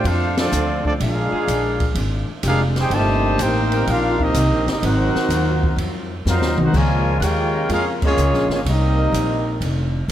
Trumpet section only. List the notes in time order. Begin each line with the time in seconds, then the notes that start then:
0.06 D4 A4 C5 F5
0.38 C4 F4 A4 D5
0.87 C4 F4 A4 D5
1.01 D4 G#4 A#4 F5
2.47 D4 G#4 A#4 F5
2.79 D#4 G#4 C5 G5
2.94 G4 C5 D#5 A5
3.41 D#4 A#4 C5 G5
3.90 D4 G4 A#4 F5
4.22 C4 G4 A#4 D#5
4.70 C4 G4 A#4 D#5
4.85 D#4 A#4 C5 F#5
6.29 D#4 A#4 C5 F5
6.64 D#4 A#4 C5 F#5
6.76 F4 A#4 C#5 G#5
7.20 A#4 F#5
7.24 F4 C#5 G5
7.72 C#4 G#4 A#4 F5
8.06 A#3 F4 G#4 C#5
8.54 A#3 F4 G#4 C#5
8.70 C4 G4 A#4 D#5